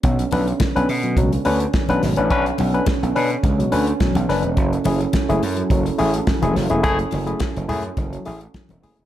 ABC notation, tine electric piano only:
X:1
M:4/4
L:1/16
Q:1/4=106
K:Bdor
V:1 name="Tine electric piano"
[B,,F,] z [DB] z2 [CDB] z [B,,F,] [B,,F,] z [CDB] [DB] z [CDB] [B,,F,] [CDB] | [CDB] z [B,,F,] [CDB] z2 [CDB] z [DB] [B,,F,] [CDB] z [B,,F,] z [CDB] [DB] | F, z [EG] z2 [A,EG] z F, F, z [A,EG] [EG] z [A,EG] F, [A,EG] | [A,EG] z F, [A,EG] z2 [A,EG] z [EG] F, [A,EG] z F, z [A,EG] [EG] |]